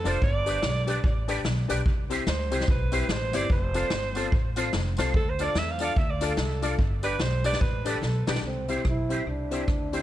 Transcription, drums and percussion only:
0.05 closed hi-hat loud
0.05 tambourine medium
0.22 kick loud
0.46 closed hi-hat medium
0.46 tambourine medium
0.62 snare loud
0.87 closed hi-hat medium
0.87 tambourine medium
1.04 kick loud
1.28 closed hi-hat loud
1.28 tambourine medium
1.45 snare loud
1.70 closed hi-hat loud
1.70 tambourine medium
1.86 kick loud
2.10 closed hi-hat loud
2.10 tambourine medium
2.27 snare loud
2.52 closed hi-hat medium
2.52 tambourine medium
2.61 snare medium
2.68 kick loud
2.92 closed hi-hat loud
2.92 tambourine medium
3.09 snare loud
3.33 closed hi-hat loud
3.33 tambourine medium
3.50 kick loud
3.74 closed hi-hat medium
3.74 tambourine medium
3.90 snare loud
4.15 closed hi-hat medium
4.15 tambourine medium
4.32 kick loud
4.56 closed hi-hat loud
4.56 tambourine medium
4.73 snare loud
4.97 snare medium
4.97 closed hi-hat loud
4.97 tambourine medium
5.14 kick loud
5.39 closed hi-hat loud
5.39 tambourine medium
5.55 snare loud
5.79 closed hi-hat loud
5.79 tambourine medium
5.96 kick loud
6.21 closed hi-hat loud
6.21 tambourine medium
6.37 snare loud
6.62 closed hi-hat loud
6.62 tambourine medium
6.79 kick loud
7.03 closed hi-hat loud
7.03 tambourine medium
7.20 snare loud
7.44 closed hi-hat medium
7.44 tambourine medium
7.53 snare medium
7.61 kick loud
7.86 closed hi-hat loud
7.86 tambourine loud
8.02 snare medium
8.27 snare loud
8.27 tambourine medium
8.35 snare loud
8.68 closed hi-hat medium
8.85 kick loud
8.85 cross-stick loud
9.10 closed hi-hat medium
9.51 closed hi-hat loud
9.68 kick loud
9.68 cross-stick loud
9.93 closed hi-hat medium

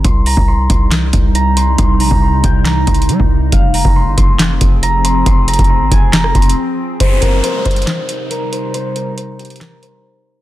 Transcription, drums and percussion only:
0.05 kick loud
0.05 closed hi-hat medium
0.26 open hi-hat medium
0.37 kick loud
0.70 kick loud
0.70 closed hi-hat medium
0.91 snare loud
0.91 clap medium
0.91 closed hi-hat medium
1.13 kick loud
1.13 closed hi-hat medium
1.35 closed hi-hat medium
1.57 closed hi-hat medium
1.78 kick loud
1.78 closed hi-hat medium
2.00 open hi-hat medium
2.11 kick loud
2.44 kick loud
2.44 closed hi-hat medium
2.65 snare loud
2.65 clap medium
2.65 closed hi-hat medium
2.87 kick loud
2.87 closed hi-hat medium
2.94 closed hi-hat medium
3.02 closed hi-hat medium
3.09 closed hi-hat medium
3.20 kick loud
3.52 kick loud
3.52 closed hi-hat medium
3.74 open hi-hat medium
3.85 kick loud
4.18 kick loud
4.18 closed hi-hat medium
4.39 snare loud
4.39 clap loud
4.39 closed hi-hat medium
4.61 kick loud
4.61 closed hi-hat medium
4.83 closed hi-hat medium
5.05 closed hi-hat medium
5.26 kick loud
5.26 closed hi-hat medium
5.48 closed hi-hat medium
5.48 open hi-hat medium
5.54 closed hi-hat medium
5.59 kick loud
5.59 closed hi-hat soft
5.64 closed hi-hat soft
5.92 kick loud
5.92 closed hi-hat medium
6.13 snare loud
6.13 clap medium
6.13 closed hi-hat medium
6.24 cross-stick loud
6.35 kick loud
6.35 closed hi-hat soft
6.42 closed hi-hat medium
6.49 closed hi-hat medium
7.00 kick loud
7.00 closed hi-hat medium
7.22 kick medium
7.22 closed hi-hat medium
7.44 closed hi-hat medium
7.65 kick loud
7.65 closed hi-hat soft
7.71 closed hi-hat medium
7.76 closed hi-hat medium
7.82 closed hi-hat medium
7.87 snare loud
7.87 clap medium
7.87 closed hi-hat medium
8.09 closed hi-hat medium
8.31 closed hi-hat medium
8.53 closed hi-hat medium
8.74 closed hi-hat medium
8.96 closed hi-hat medium
9.18 closed hi-hat medium
9.39 closed hi-hat soft
9.45 closed hi-hat medium
9.50 closed hi-hat medium
9.56 closed hi-hat medium
9.61 snare loud
9.61 clap medium
9.83 closed hi-hat medium

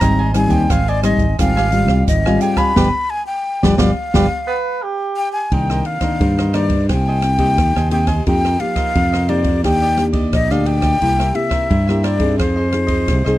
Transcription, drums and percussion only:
0.01 kick medium
0.01 cross-stick medium
0.01 closed hi-hat medium
0.34 cross-stick medium
0.34 closed hi-hat soft
0.50 kick medium
0.50 closed hi-hat soft
0.70 kick medium
0.70 cross-stick medium
0.70 closed hi-hat medium
0.88 closed hi-hat soft
1.03 cross-stick medium
1.03 closed hi-hat medium
1.19 kick medium
1.19 closed hi-hat soft
1.39 kick medium
1.39 cross-stick medium
1.39 closed hi-hat medium
1.57 cross-stick medium
1.72 closed hi-hat soft
1.88 kick medium
1.88 cross-stick medium
2.08 kick medium
2.08 closed hi-hat medium
2.26 cross-stick medium
2.41 closed hi-hat medium
2.56 kick medium
2.56 cross-stick medium
2.76 kick medium
2.76 snare medium
3.63 kick medium
3.63 snare medium
3.78 kick medium
3.78 snare medium
4.14 kick medium
4.14 snare medium
5.52 kick medium
5.52 ride soft
5.70 cross-stick medium
5.85 ride soft
6.01 kick medium
6.01 cross-stick medium
6.01 ride soft
6.20 kick medium
6.20 ride soft
6.39 cross-stick medium
6.54 cross-stick medium
6.54 ride soft
6.70 kick medium
6.70 ride soft
6.89 kick medium
6.89 cross-stick medium
6.89 ride soft
7.22 cross-stick medium
7.22 ride soft
7.38 kick medium
7.38 ride soft
7.58 kick medium
7.58 cross-stick medium
7.58 ride soft
7.76 cross-stick medium
7.91 ride medium
8.07 kick medium
8.07 cross-stick soft
8.07 ride soft
8.27 kick medium
8.27 ride soft
8.45 cross-stick medium
8.60 ride soft
8.76 kick medium
8.76 cross-stick medium
8.76 ride soft
8.95 kick medium
8.95 ride soft
9.13 cross-stick medium
9.29 ride soft
9.44 kick medium
9.44 ride soft
9.64 kick medium
9.64 cross-stick medium
9.64 ride soft
9.97 cross-stick soft
9.97 ride soft
10.13 kick medium
10.13 ride soft
10.33 kick medium
10.33 cross-stick medium
10.33 ride soft
10.51 cross-stick medium
10.66 ride soft
10.82 kick medium
10.82 cross-stick medium
10.82 ride soft
11.02 kick medium
11.02 ride soft
11.20 cross-stick medium
11.35 ride soft
11.51 kick medium
11.51 cross-stick medium
11.51 ride soft
11.71 kick medium
11.71 ride soft
11.89 cross-stick medium
12.04 cross-stick medium
12.04 ride soft
12.20 kick medium
12.20 ride soft
12.39 kick medium
12.39 cross-stick medium
12.39 ride soft
12.72 cross-stick medium
12.72 ride soft
12.88 kick medium
12.88 ride soft
13.08 kick medium
13.08 cross-stick medium
13.08 ride soft
13.26 cross-stick medium

